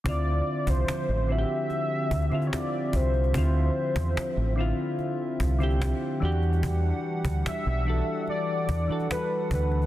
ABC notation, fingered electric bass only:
X:1
M:4/4
L:1/16
Q:1/4=73
K:Ephr
V:1 name="Fingered electric bass" clef=bass
D,,2 z C,, z A,,,2 z3 D,, D, z2 C,,2 | D,,2 z E,, z A,,,2 z3 C,,3 z E,,2- | E,,2 z D,, z B,,,2 z3 E,, E, z2 D,,2 |]